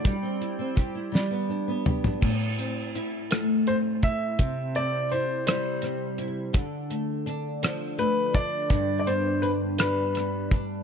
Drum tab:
CC |------------|x-----------|------------|------------|
HH |x-x-x-------|--x-x-x-x-x-|x-x-x-x-x-x-|x-x-x-x-x-x-|
SD |------o-----|------r-----|------r-r---|------r-----|
T2 |----------o-|------------|------------|------------|
FT |-----------o|------------|------------|------------|
BD |o---o-------|o---------o-|o-----------|o---------o-|

CC |------------|
HH |x-x-x-x-x-x-|
SD |------r-r---|
T2 |------------|
FT |------------|
BD |o---------o-|